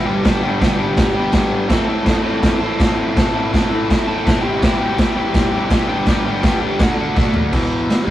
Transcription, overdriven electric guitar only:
0.06 G2 D3 G3 B3 D4 G4
0.24 G2 D3 G3 B3 D4 G4
0.43 G3 B3 D4 G4
0.59 G2 D3 G3 B3 D4 G4
0.77 G3 B3 D4 G4
1.14 G3 B3 D4 G4
1.32 G3 B3 D4 G4
1.68 A2 E3 C4 E4 A4
1.88 C4 E4 A4
2.04 A2 E3 C4 E4 A4
2.23 E4 A4
2.27 C4
2.60 C4 E4 A4
2.77 E3 C4 E4
2.81 A4
3.15 A2 E3 C4 E4 A4
3.34 C4 E4 A4
3.53 A2 E3 C4 E4 A4
3.72 C4 E4 A4
4.08 C4 E4 A4
4.25 E3 C4 E4 A4
4.42 E2 B2 E3 G3 E4 G4
4.61 E2 B2 E3 G3 E4 G4
4.80 E3 G3 E4 G4
4.99 E2 B2 E3 G3 E4 G4
5.16 E3 G3 E4 G4
5.52 E3 G3 E4 G4
5.71 E3 G3 E4 G4
5.88 G2 D3 G3 B3 D4 G4
6.05 G2 D3 G3 B3 D4 G4
6.26 G3 B3 D4 G4
6.43 G2 D3 G3 B3 D4 G4
6.60 G3 B3 D4 G4
6.79 D3 A3 D4 F#4
6.97 A3 D4 F#4
7.15 D3 A3 D4 F#4
7.52 E2 B2 E3
8.07 D3

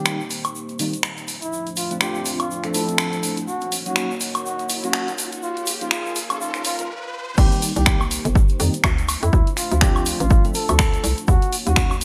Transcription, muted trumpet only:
Already playing: G4
1.42 E4
1.77 F4
2.01 G4
2.40 F4
2.74 A4
3.48 F#4
3.86 F#4
4.45 F#4
4.84 F#4
5.43 F4
5.81 F4
5.92 F4
6.30 F4
6.40 F4
6.65 F4
7.38 G4
7.76 G4
9.23 E4
9.57 F4
9.82 G4
10.20 F4
10.55 A4
11.28 F#4
11.67 F#4

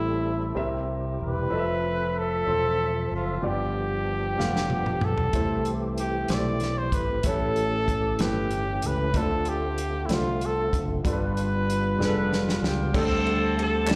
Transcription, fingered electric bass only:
Already playing: A1
0.56 C2
1.20 E1
1.52 F1
2.47 E1
3.12 F#1
3.43 G1
4.39 F1
5.02 B1
5.33 C2
6.29 B1
6.92 G#1
7.24 A1
8.20 G1
8.84 C#2
9.14 D2
10.09 C2
10.73 F#1
11.05 G1
11.99 F1
12.62 C#2
12.95 D2

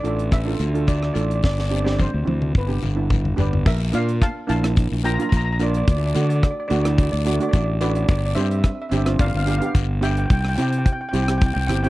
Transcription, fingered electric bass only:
0.04 A1
0.60 D2
1.16 A1
1.44 G1
2.14 D2
2.27 D2
2.55 G1
2.83 G1
3.39 G1
3.66 A#1
3.94 A#2
4.50 A#1
4.92 A#1
5.32 A#1
5.88 D2
6.16 D3
6.71 D2
7.13 D2
7.53 A1
8.09 G1
8.36 G2
8.92 G1
9.20 G1
9.34 G1
9.75 G1
10.30 C2
10.58 C3
11.13 C2
11.56 C2
11.68 G1

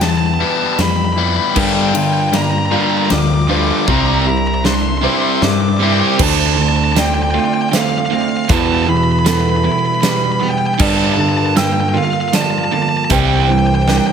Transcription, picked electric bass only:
Already playing: E2
0.78 F2
1.57 G2
3.11 D2
3.88 C2
5.42 G2
6.20 D2
8.50 E2
10.80 G2
13.11 C2

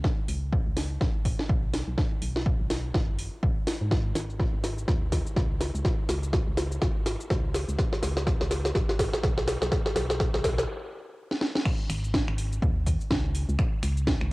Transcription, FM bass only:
0.28 C#2
0.67 C#2
1.01 G#1
1.49 B1
1.88 B1
2.22 B1
2.60 B1
2.94 F#1
3.43 B1
3.81 G#2
4.15 G#1
4.54 G#1
4.88 D#2
5.36 C#2
5.75 C#2
6.09 C#2
6.47 C#2
6.82 G#1
7.30 C#2
7.68 C#2
8.03 C#2
8.41 C#2
8.75 G#1
9.23 B1
9.62 B1
9.96 B1
10.34 B1
11.90 G#1
12.28 G#1
12.62 D#2
13.11 C#2
13.49 C#2
13.83 C#2
14.22 C#2

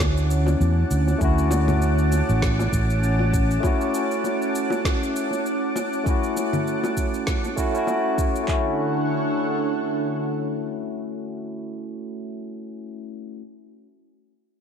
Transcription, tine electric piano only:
Already playing: A3 C#4 E4 F#4
1.18 A3 C#4
1.22 E4 F#4
3.60 A3 C#4
3.65 E4 F#4
6.04 A3 C#4
6.08 E4 F#4
7.56 A3 C#4 E4 F#4
7.72 A3 C#4
7.76 E4 F#4
8.44 A3 C#4
8.50 E4 F#4

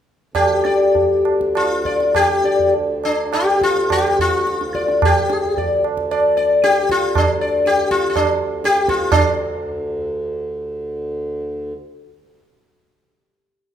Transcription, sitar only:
0.35 G4
0.66 D5
1.57 F4
1.86 D5
2.16 G4
2.45 D5
3.05 D4
3.33 G4
3.63 F4
3.92 G4
4.21 F4
4.75 D5
5.05 G4
5.58 D5
6.11 D5
6.37 D5
6.64 G4
6.91 F4
7.18 D4
7.41 D5
7.67 G4
7.91 F4
8.10 F4
8.16 D4
8.65 G4
8.89 F4
9.12 D4

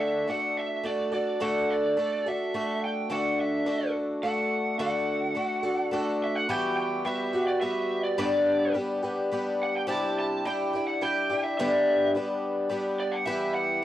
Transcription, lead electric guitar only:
0.00 E5
0.30 F#5
0.57 E5
0.86 D5
1.14 D5
1.42 F#5
1.70 D5
2.28 E5
2.84 G5
3.13 F#5
3.41 E5
4.23 F#5
4.80 F#5
6.24 E5
6.35 F#5
6.51 G5
6.77 G5
7.06 E5
7.47 D5
7.61 E5
8.04 D5
8.20 D5
9.63 F#5
9.77 G5
9.90 A5
10.19 A5
10.47 G5
10.87 F#5
11.03 G5
11.44 E5
11.58 E5
13.00 D5
13.12 F#5
13.26 E5
13.54 F#5

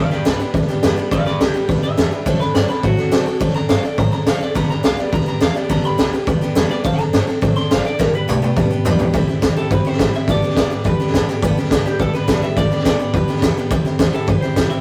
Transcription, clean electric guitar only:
Already playing: D5 F5
0.11 B4 D5
0.27 B4
1.12 D5 F5
1.26 B4 D5
1.41 G4
1.83 E5
2.40 B4
2.55 D5
2.69 B4
2.83 F#4
3.56 A#5
3.70 F5
3.84 D5
3.99 A#5
4.13 A#5
4.28 F5
4.43 D5
4.57 A#5
4.70 A#5
4.85 F5
5.00 D5
5.14 A#5
5.28 A#5
5.42 F5
5.56 D5
5.71 A#5
5.85 B5
6.71 D5
6.85 F5
6.99 A#5
7.57 C6
7.71 F5
7.86 D5
7.99 A#4
8.15 B4
9.57 A4
9.72 B4
9.87 C5
10.16 E5
10.31 D5
10.58 D5
10.87 B4
11.86 G4
12.00 A4
12.15 B4
12.43 E5
12.58 D5
12.86 D5
13.15 B4
14.14 A4
14.28 B4
14.41 C5
14.70 E5

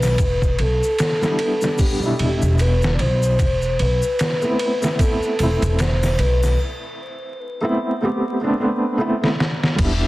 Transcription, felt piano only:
Already playing: G3 B3 D4 E4
1.22 G3 B3 D4 E4
1.62 G3 B3 D4 G4
1.99 B2 G3
2.04 D4 E4
4.42 A3 B3 C4 E4
4.81 A3 B3 C4 E4
5.36 A3
5.41 C4 E4
7.61 A3 B3 C4 E4
8.01 A3 B3 C4 G4
8.41 A3 B3 C4 D4
8.58 A3 B3 C4 D4
8.98 A3 B3 C4 E4
9.21 A3 B3 C4 E4
9.76 G3 B3
9.80 D4 E4

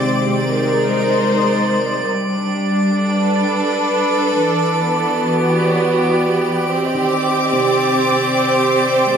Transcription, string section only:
Already playing: G#3 C4 G4 C5 D6
0.34 D#4
0.40 A#4
0.81 C5
2.05 G3
2.25 D4
2.92 A4
3.13 B4
4.41 E3
4.82 B3
5.15 F#4
5.46 G4
6.71 C4
7.04 D6
7.69 C5
9.07 G#3

